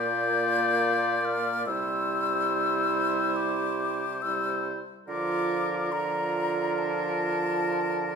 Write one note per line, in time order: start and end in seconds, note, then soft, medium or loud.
0.00 1.63 A#2 loud
0.00 1.69 A#3 loud
0.00 1.64 F4 loud
0.00 1.65 D5 loud
0.00 1.26 G6 loud
1.25 1.66 F6 loud
1.66 4.77 C3 medium
1.66 4.23 G3 medium
1.66 4.07 E4 loud
1.66 4.21 C5 loud
1.66 3.38 E6 loud
3.36 4.23 D6 loud
4.22 4.81 G3 medium
4.22 4.81 E4 medium
4.22 4.80 C5 medium
4.22 4.66 E6 loud
5.08 8.15 D3 medium
5.08 5.89 F3 medium
5.08 5.89 F4 loud
5.08 5.89 A#4 medium
5.08 5.93 D6 loud
5.92 8.15 F3 medium
5.92 8.15 F4 medium
5.92 8.15 A#4 loud
5.92 6.80 A#5 loud
6.78 8.15 A5 loud